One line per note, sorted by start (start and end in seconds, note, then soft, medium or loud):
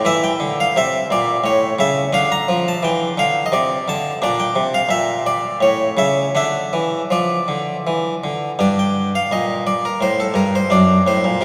0.05 0.30 E3 medium
0.05 1.40 E4 soft
0.05 0.24 E5 loud
0.24 0.58 G5 loud
0.40 0.65 D3 medium
0.60 0.77 F5 loud
0.76 1.01 C3 medium
0.76 1.06 E5 loud
1.11 1.35 A#2 medium
1.11 1.45 D5 loud
1.44 1.69 A2 medium
1.44 1.74 C#5 loud
1.79 2.03 C#3 medium
1.79 2.09 E5 loud
2.13 2.38 D3 medium
2.13 3.47 D4 soft
2.13 2.31 F5 loud
2.32 2.60 A#5 loud
2.48 2.73 F3 medium
2.68 2.84 A5 medium
2.83 3.07 E3 medium
2.83 3.18 G5 loud
3.18 3.42 D3 medium
3.18 3.45 F5 loud
3.46 3.52 D#5 medium
3.52 3.77 C3 medium
3.52 3.87 D5 loud
3.88 4.12 D3 medium
3.88 4.17 A5 loud
4.22 4.46 A#2 medium
4.22 4.86 D4 soft
4.22 4.39 D5 loud
4.40 4.68 G5 loud
4.55 4.80 C3 medium
4.74 4.91 F5 medium
4.89 5.40 A#2 medium
4.89 5.25 E5 medium
5.26 5.56 D5 loud
5.61 5.87 A2 medium
5.61 5.93 C#5 medium
5.97 6.24 C#3 medium
5.97 6.30 E5 medium
6.35 6.62 D3 medium
6.35 8.55 D4 soft
6.35 7.00 E5 medium
6.73 7.00 E3 medium
7.10 7.38 F3 medium
7.10 8.23 D5 medium
7.48 7.75 D3 medium
7.87 8.13 E3 medium
8.24 8.49 D3 medium
8.59 9.10 G2 soft
8.59 10.67 D4 soft
8.59 8.77 D5 medium
8.79 9.08 G5 medium
9.15 9.32 F5 medium
9.31 9.82 A#2 soft
9.31 9.62 D#5 medium
9.67 9.84 D5 medium
9.85 10.02 A#4 medium
10.01 10.26 A2 soft
10.01 10.19 C5 medium
10.20 10.37 A4 medium
10.34 10.60 G2 soft
10.34 10.53 A#4 medium
10.55 10.72 C5 medium
10.70 10.96 F#2 soft
10.70 11.45 D4 soft
10.70 11.01 D5 medium
11.07 11.23 A2 soft
11.07 11.42 C5 medium
11.24 11.40 A#2 soft
11.41 11.45 C3 soft